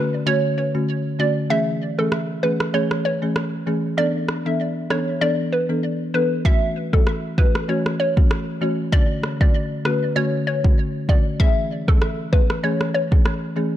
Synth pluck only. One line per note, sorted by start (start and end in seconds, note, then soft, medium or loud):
0.00 0.19 B4 medium
0.27 0.40 C#5 loud
0.58 0.71 C#5 medium
1.20 1.33 D5 medium
1.50 1.74 E5 loud
1.99 2.09 A4 medium
2.43 2.56 B4 medium
2.74 2.87 C#5 medium
3.05 3.18 C#5 medium
3.98 4.11 D5 loud
4.46 4.69 E5 medium
4.91 5.14 C#5 medium
5.21 5.35 D5 loud
5.53 5.66 B4 medium
6.14 6.27 B4 medium
6.45 6.69 E5 loud
6.93 7.04 A4 medium
7.38 7.51 B4 medium
7.69 7.82 C#5 medium
8.00 8.13 C#5 medium
8.93 9.06 D5 loud
9.41 9.64 D5 medium
9.85 10.09 B4 medium
10.16 10.29 C#5 loud
10.47 10.60 C#5 medium
11.09 11.22 D5 medium
11.40 11.63 E5 loud
11.88 11.98 A4 medium
12.33 12.46 B4 medium
12.64 12.77 C#5 medium
12.94 13.08 C#5 medium